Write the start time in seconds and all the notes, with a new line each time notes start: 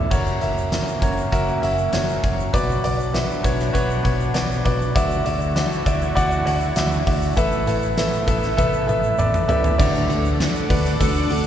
Already playing: E4 A4 B4 D5 E5
0.10 F#1 F#3 A#3 C#4 F#4 A#4 C#5, kick, crash, shaker
0.26 shaker
0.41 F#1 F#4 A#4 E5, closed hi-hat
0.57 shaker
0.72 F#4 A#4 E5, snare, closed hi-hat, shaker
0.88 shaker
1.02 F#1 F#4 A#4 C#5, kick, closed hi-hat, shaker
1.18 shaker
1.32 F#1 F#4 A#4 E5, kick, closed hi-hat, shaker
1.48 shaker
1.62 F#1 F#4 A#4 E5, closed hi-hat
1.78 shaker
1.93 F#1 F#4 A#4 C#5, snare, closed hi-hat, shaker
2.09 shaker
2.23 F#1 F#4 A#4 C#5, kick, closed hi-hat
2.40 shaker
2.53 B1 B2 B3 D4 F#4 B4 D5, kick, closed hi-hat, shaker
2.70 shaker
2.84 B1 F#4 B4 D5, closed hi-hat
3.00 shaker
3.13 F#4 B4 E5, snare, closed hi-hat, shaker
3.31 shaker
3.43 B1 F#4 B4 C#5, kick, closed hi-hat, shaker
3.60 snare, shaker
3.73 B1 F#4 B4 C#5, kick, closed hi-hat, shaker
3.90 shaker
4.03 B1 F#4 B4 C#5, kick, closed hi-hat
4.20 shaker
4.34 B1 F#4 B4 D5, snare, closed hi-hat, shaker
4.51 shaker
4.64 B1 F#4 B4 D5, kick, closed hi-hat
4.81 shaker
4.95 D2 D3 A3 E4 F#4 D5 E5, kick, closed hi-hat, shaker
5.11 shaker
5.25 D2 F#4 D5 E5, closed hi-hat
5.41 shaker
5.56 F#4 D5 E5, snare, closed hi-hat, shaker
5.72 shaker
5.86 D2 F#4 D5 E5, kick, closed hi-hat, shaker
6.02 shaker
6.15 D2 F#4 D5 F#5, kick, closed hi-hat, shaker
6.31 shaker
6.46 D2 F#4 D5 F#5, closed hi-hat
6.61 shaker
6.76 D2 F#4 D5 E5, snare, closed hi-hat, shaker
6.92 shaker
7.07 D2 F#4 D5 E5, kick, open hi-hat
7.22 shaker
7.37 A1 A2 A3 B3 A4 B4 E5, kick, closed hi-hat, shaker
7.52 shaker
7.67 A1 A4 B4 E5, closed hi-hat, shaker
7.82 shaker
7.97 A4 B4 E5, snare, closed hi-hat, shaker
8.13 shaker
8.27 A1 A4 B4 E5, kick, closed hi-hat, shaker
8.43 snare, shaker
8.57 A1 A4 B4 E5, kick, high tom, shaker
8.73 shaker
8.87 A1 A4 B4 E5, mid tom, shaker
9.03 shaker
9.18 A1 A4 B4 D5, mid tom, shaker
9.34 mid tom, shaker
9.48 A1 G4 A4 B4 D5 E5, floor tom, shaker
9.64 floor tom, shaker
9.78 D2 D3 F#3 A3 D4 F#4 A4 D5 F#5 D6, kick, crash, shaker
9.95 shaker
10.09 D2 A3 D4 F#4, hi-hat pedal, open hi-hat
10.25 shaker
10.40 D3 A3 D4 F#4, snare, hi-hat pedal, open hi-hat, shaker
10.55 shaker
10.69 D2 A3 D4 F#4 B4, kick, hi-hat pedal, open hi-hat
10.85 snare, shaker
11.00 D2 D3 A3 D4 F#4 A4, kick, hi-hat pedal, open hi-hat, shaker
11.15 shaker
11.30 D2 A3 D4 F#4, hi-hat pedal, open hi-hat